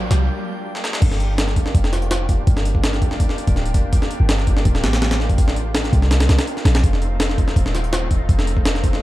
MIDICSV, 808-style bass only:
0, 0, Header, 1, 2, 480
1, 0, Start_track
1, 0, Key_signature, -2, "minor"
1, 0, Tempo, 363636
1, 1344, Time_signature, 4, 2, 24, 8
1, 11906, End_track
2, 0, Start_track
2, 0, Title_t, "808-style bass"
2, 0, Program_c, 0, 38
2, 140, Note_on_c, 0, 36, 103
2, 382, Note_off_c, 0, 36, 0
2, 1345, Note_on_c, 0, 31, 103
2, 2286, Note_off_c, 0, 31, 0
2, 2304, Note_on_c, 0, 29, 101
2, 3245, Note_off_c, 0, 29, 0
2, 3263, Note_on_c, 0, 31, 101
2, 4205, Note_off_c, 0, 31, 0
2, 4587, Note_on_c, 0, 26, 96
2, 4942, Note_on_c, 0, 29, 101
2, 4962, Note_off_c, 0, 26, 0
2, 5160, Note_off_c, 0, 29, 0
2, 5544, Note_on_c, 0, 31, 85
2, 6123, Note_off_c, 0, 31, 0
2, 6143, Note_on_c, 0, 26, 102
2, 6381, Note_on_c, 0, 33, 96
2, 6401, Note_off_c, 0, 26, 0
2, 7804, Note_off_c, 0, 33, 0
2, 7823, Note_on_c, 0, 36, 101
2, 8285, Note_off_c, 0, 36, 0
2, 8300, Note_on_c, 0, 36, 84
2, 8414, Note_off_c, 0, 36, 0
2, 8779, Note_on_c, 0, 34, 108
2, 8998, Note_off_c, 0, 34, 0
2, 9021, Note_on_c, 0, 29, 102
2, 9964, Note_off_c, 0, 29, 0
2, 9981, Note_on_c, 0, 27, 101
2, 10924, Note_off_c, 0, 27, 0
2, 10942, Note_on_c, 0, 29, 97
2, 11885, Note_off_c, 0, 29, 0
2, 11906, End_track
0, 0, End_of_file